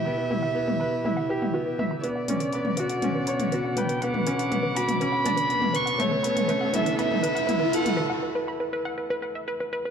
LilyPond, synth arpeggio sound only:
\new Staff \with { instrumentName = "Synth arpeggio sound" } { \time 4/4 \key b \minor \tempo 4 = 121 b''16 b'16 b'16 fis''16 b'16 b'16 b''16 b'16 b'16 fis''16 b'16 fis''16 fis'16 b'16 b'16 b''16 | b'16 fis''16 b'16 b'16 b''16 b'16 b'16 fis''16 b'16 b'16 b''16 b'16 b'16 fis''16 b'16 b'16 | b''16 b'16 b'16 fis''16 b'16 b'16 b''16 b'16 b'16 fis''16 b'16 b'16 b''16 b'16 b'16 fis''16 | b'16 b'16 b''16 b'16 b'16 fis''16 b'16 b'16 b''16 b'16 b'16 fis''16 b'16 b'16 b''16 b'16 |
b'16 fis''16 b'16 b'16 b''16 b'16 b'16 fis''16 b'16 b'16 b'16 e''16 b'16 b'16 b'16 b'16 | }